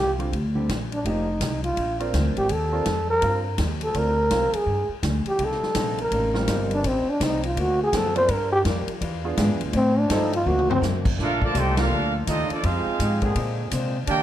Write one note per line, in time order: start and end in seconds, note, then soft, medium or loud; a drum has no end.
0.00 0.31 C2 medium
0.00 0.12 G4 loud
0.19 0.31 D3 medium
0.19 0.31 G3 medium
0.19 0.31 C4 medium
0.19 0.31 F4 medium
0.19 ride soft
0.32 0.67 D2 medium
0.32 kick soft
0.32 ride medium
0.55 0.67 D3 medium
0.55 0.67 G3 medium
0.55 0.67 C4 medium
0.55 0.67 G4 medium
0.69 1.04 A#1 medium
0.69 kick soft
0.69 snare medium
0.69 hi-hat pedal medium
0.69 ride medium
0.92 1.09 D4 medium
0.92 ride medium
1.05 1.40 F1 medium
1.05 1.25 F3 medium
1.05 1.25 A#3 medium
1.05 1.26 D#4 medium
1.05 1.64 D#4 medium
1.05 1.26 G4 medium
1.05 kick soft
1.05 ride medium
1.40 1.76 C2 loud
1.40 kick soft
1.40 snare medium
1.40 hi-hat pedal medium
1.40 ride medium
1.64 1.97 F4 medium
1.64 ride soft
1.77 2.12 A#1 medium
1.77 kick soft
1.77 ride medium
2.00 2.47 C4 medium
2.00 2.47 F4 medium
2.00 2.47 A#4 medium
2.00 2.47 D5 medium
2.00 ride medium
2.13 2.27 D2 loud
2.13 kick soft
2.13 snare medium
2.13 hi-hat pedal medium
2.13 ride medium
2.26 2.37 A#1 medium
2.37 2.49 G#1 medium
2.37 2.54 G4 loud
2.37 ride soft
2.49 2.84 D#2 medium
2.49 3.09 A4 medium
2.49 kick soft
2.49 ride medium
2.72 2.84 C4 medium
2.72 2.85 F4 medium
2.72 2.85 A#4 medium
2.72 2.85 D5 medium
2.85 3.21 F2 medium
2.85 kick soft
2.85 snare medium
2.85 hi-hat pedal medium
2.85 ride medium
3.10 3.43 A#4 loud
3.22 3.57 G2 loud
3.22 3.42 C4 medium
3.22 3.43 F4 medium
3.22 3.43 A#4 medium
3.22 3.43 F5 medium
3.22 kick soft
3.22 ride medium
3.58 3.93 D#2 loud
3.58 kick soft
3.58 snare medium
3.58 hi-hat pedal medium
3.58 ride medium
3.81 4.00 A4 loud
3.81 ride medium
3.94 4.29 D2 medium
3.94 4.15 C4 medium
3.94 4.15 F4 medium
3.94 4.15 A#4 medium
3.94 4.58 A#4 loud
3.94 4.15 D5 medium
3.94 kick soft
3.94 ride medium
4.31 4.52 C2 loud
4.31 4.51 C4 medium
4.31 4.51 F4 medium
4.31 4.51 A#4 medium
4.31 4.52 F5 medium
4.31 kick soft
4.31 snare medium
4.31 hi-hat pedal medium
4.31 ride medium
4.53 4.91 G#4 medium
4.53 ride medium
4.66 4.88 G2 medium
4.66 kick soft
4.89 muted upright bass stroke soft
5.03 5.24 D2 loud
5.03 kick soft
5.03 snare medium
5.03 hi-hat pedal medium
5.03 ride medium
5.25 5.46 G4 loud
5.25 muted upright bass stroke soft
5.25 ride soft
5.39 5.60 C2 medium
5.39 5.63 C3 soft
5.39 5.64 G3 medium
5.39 5.64 A#3 soft
5.39 5.64 D#4 medium
5.39 kick soft
5.39 ride medium
5.44 6.01 A4 loud
5.51 snare soft
5.61 muted upright bass stroke soft
5.61 snare soft
5.75 6.10 A#1 medium
5.75 5.99 C3 medium
5.75 6.00 G3 medium
5.75 6.00 A#3 medium
5.75 6.00 D#4 medium
5.75 kick soft
5.75 snare medium
5.75 hi-hat pedal medium
5.75 ride medium
5.98 6.33 A#4 medium
5.98 ride soft
6.11 6.46 A1 medium
6.11 6.36 C3 soft
6.11 6.36 G3 soft
6.11 6.37 A#3 medium
6.11 6.37 D#4 medium
6.11 kick soft
6.11 ride medium
6.34 6.81 G3 medium
6.34 6.81 C4 medium
6.34 6.81 F4 medium
6.34 6.81 A#4 medium
6.34 snare medium
6.47 6.83 G1 loud
6.47 6.72 C3 medium
6.47 6.72 G3 medium
6.47 6.72 A#3 medium
6.47 6.73 D#4 medium
6.47 kick soft
6.47 snare medium
6.47 hi-hat pedal medium
6.47 ride medium
6.71 6.88 D4 loud
6.71 ride medium
6.83 7.05 A1 loud
6.83 7.08 A2 medium
6.83 7.08 G3 medium
6.83 7.09 C4 medium
6.83 7.11 C4 medium
6.83 7.09 D#4 medium
6.83 kick soft
6.83 ride medium
7.06 7.25 D4 loud
7.06 muted upright bass stroke soft
7.19 7.55 C2 loud
7.19 7.44 A2 medium
7.19 7.44 G3 medium
7.19 7.45 C4 medium
7.19 7.45 D#4 medium
7.19 kick soft
7.19 snare medium
7.19 hi-hat pedal medium
7.19 ride medium
7.24 7.45 D#4 medium
7.43 7.62 F4 medium
7.43 ride medium
7.56 7.91 D2 medium
7.56 7.80 D3 medium
7.56 7.81 A#3 medium
7.56 7.81 C4 medium
7.56 7.82 F#4 medium
7.56 kick soft
7.56 ride medium
7.61 7.81 F#4 loud
7.83 7.99 G#4 loud
7.93 8.28 F#2 loud
7.93 8.17 D3 medium
7.93 8.17 A#3 medium
7.93 8.17 C4 medium
7.93 8.18 F#4 medium
7.93 kick soft
7.93 snare medium
7.93 hi-hat pedal medium
7.93 ride medium
7.97 8.17 A4 loud
8.15 8.27 C4 medium
8.15 8.27 F4 medium
8.15 8.28 A#4 medium
8.15 8.34 C5 loud
8.15 8.28 D5 medium
8.15 ride medium
8.28 8.64 G2 loud
8.28 8.53 G3 soft
8.28 8.53 D4 medium
8.28 8.54 F4 medium
8.28 8.54 A#4 medium
8.28 kick soft
8.28 ride medium
8.32 8.52 A#4 loud
8.52 8.60 G4 loud
8.64 8.86 F2 loud
8.64 8.89 G3 medium
8.64 8.89 D4 medium
8.64 8.89 F4 medium
8.64 8.90 A#4 medium
8.64 kick soft
8.64 snare medium
8.64 hi-hat pedal medium
8.64 ride medium
8.87 muted upright bass stroke soft
8.87 ride medium
9.01 9.36 E2 loud
9.01 9.25 E3 medium
9.01 9.25 D4 medium
9.01 9.26 F4 medium
9.01 9.26 G#4 medium
9.01 kick soft
9.01 ride medium
9.24 9.71 B3 medium
9.24 9.71 D4 medium
9.24 9.71 F4 medium
9.24 9.71 G#4 medium
9.36 9.49 G#2 loud
9.36 9.61 E3 medium
9.36 9.62 D4 medium
9.36 9.62 F4 medium
9.36 9.62 G#4 medium
9.36 kick soft
9.36 snare medium
9.36 hi-hat pedal medium
9.36 ride medium
9.49 9.61 E2 medium
9.61 9.73 D2 medium
9.61 ride medium
9.72 9.97 A2 medium
9.72 10.09 A2 loud
9.72 9.98 G3 medium
9.72 9.98 C4 medium
9.72 10.00 C4 loud
9.72 9.99 D#4 medium
9.72 kick soft
9.72 ride medium
9.99 10.15 D4 loud
10.09 10.45 G2 medium
10.09 10.34 A2 medium
10.09 10.34 G3 medium
10.09 10.31 G3 medium
10.09 10.34 C4 medium
10.09 10.30 C4 medium
10.09 10.34 D#4 medium
10.09 10.34 D#4 loud
10.09 10.31 F4 medium
10.09 10.31 A4 loud
10.09 kick soft
10.09 snare medium
10.09 hi-hat pedal medium
10.09 ride medium
10.33 10.49 F4 loud
10.33 ride medium
10.45 10.81 D2 medium
10.45 10.70 D3 medium
10.45 10.71 A#3 medium
10.45 10.71 C4 medium
10.45 10.70 F#4 loud
10.45 10.71 F#4 medium
10.45 high tom medium
10.59 mid tom medium
10.69 10.81 A#3 medium
10.69 10.81 C4 medium
10.69 10.79 C4 loud
10.69 10.81 F#4 medium
10.69 10.81 C5 loud
10.69 floor tom loud
10.82 11.17 F#2 loud
10.82 11.06 D3 medium
10.82 11.06 A#3 medium
10.82 11.07 C4 medium
10.82 11.07 F#4 medium
10.82 snare medium
10.82 hi-hat pedal medium
11.05 kick medium
11.05 crash medium
11.18 11.54 A#1 medium
11.18 11.42 A#2 soft
11.18 11.43 A3 medium
11.18 11.41 A3 medium
11.18 11.43 D4 soft
11.18 11.41 D4 loud
11.18 11.41 D4 medium
11.18 11.40 F4 medium
11.18 11.43 F4 medium
11.18 11.41 F5 medium
11.18 kick soft
11.18 snare soft
11.22 11.42 A4 medium
11.22 11.42 A#4 medium
11.42 11.54 D3 medium
11.42 11.55 F3 loud
11.42 11.54 A3 medium
11.42 11.56 F4 medium
11.42 11.56 A#4 medium
11.42 11.56 D5 medium
11.42 11.56 A5 loud
11.42 kick medium
11.54 11.90 C2 loud
11.54 11.78 A#2 medium
11.54 11.79 A3 medium
11.54 11.79 D4 medium
11.54 11.79 F4 medium
11.54 11.78 G4 loud
11.54 kick soft
11.54 hi-hat pedal medium
11.54 ride medium
11.59 11.79 D#4 medium
11.59 11.79 A4 medium
11.59 11.79 C5 loud
11.59 11.80 G5 loud
11.77 12.24 F3 loud
11.77 12.24 A#3 medium
11.77 12.14 A#3 medium
11.77 12.24 D4 loud
11.77 12.14 D4 medium
11.77 12.15 D4 medium
11.77 12.24 F4 loud
11.77 12.14 F4 medium
11.77 12.15 A4 medium
11.77 12.15 A#4 medium
11.77 12.15 F5 loud
11.77 snare medium
11.77 ride medium
11.91 12.26 D2 medium
11.91 12.15 A#2 medium
11.91 12.16 A3 medium
11.91 12.16 D4 medium
11.91 12.17 F4 medium
12.27 12.48 D#2 loud
12.27 12.52 A#2 medium
12.27 12.52 A3 medium
12.27 12.49 C4 medium
12.27 12.52 D4 medium
12.27 12.48 D#4 medium
12.27 12.49 F4 medium
12.27 12.53 F4 medium
12.27 12.49 A4 medium
12.27 12.49 D#5 medium
12.27 kick soft
12.27 hi-hat pedal medium
12.27 ride medium
12.49 12.63 F3 medium
12.49 12.64 A3 medium
12.49 12.65 A#3 medium
12.49 12.63 D4 medium
12.49 12.65 F4 medium
12.49 12.65 A4 medium
12.49 12.65 D5 medium
12.49 muted upright bass stroke soft
12.49 ride medium
12.63 12.85 F2 loud
12.63 12.87 F3 medium
12.63 13.22 G#3 medium
12.63 12.88 G#3 medium
12.63 13.22 C4 medium
12.63 12.88 D#4 medium
12.63 13.24 D#4 medium
12.63 13.22 F4 medium
12.63 12.89 G4 medium
12.63 13.24 G#4 medium
12.63 13.23 C5 medium
12.63 13.24 F5 medium
12.63 kick soft
12.63 ride medium
12.86 muted upright bass stroke soft
12.99 13.35 G#2 loud
12.99 13.23 F3 medium
12.99 13.24 G#3 medium
12.99 13.24 D#4 medium
12.99 13.24 G4 medium
12.99 kick soft
12.99 hi-hat pedal medium
12.99 ride medium
13.21 13.69 D3 loud
13.21 13.69 A#3 loud
13.21 13.69 C4 loud
13.21 13.69 G#4 loud
13.21 kick medium
13.21 ride medium
13.35 13.60 A#2 medium
13.35 13.71 A#2 medium
13.35 13.60 G#3 medium
13.35 13.61 C4 medium
13.35 13.61 D4 medium
13.35 kick soft
13.35 ride medium
13.71 13.96 A#2 medium
13.71 14.07 C3 loud
13.71 13.97 G#3 medium
13.71 13.97 C4 medium
13.71 13.97 D4 medium
13.71 kick soft
13.71 hi-hat pedal medium
13.71 ride medium
14.07 14.23 D#3 medium
14.07 14.23 D#3 loud
14.07 14.23 G3 medium
14.07 14.23 A#3 loud
14.07 14.23 A#3 medium
14.07 14.23 D4 loud
14.07 14.23 D4 medium
14.07 14.23 D#4 medium
14.07 14.23 G4 medium
14.07 14.23 A#4 medium
14.07 14.23 D5 medium
14.07 14.23 G5 loud
14.07 kick soft
14.07 ride medium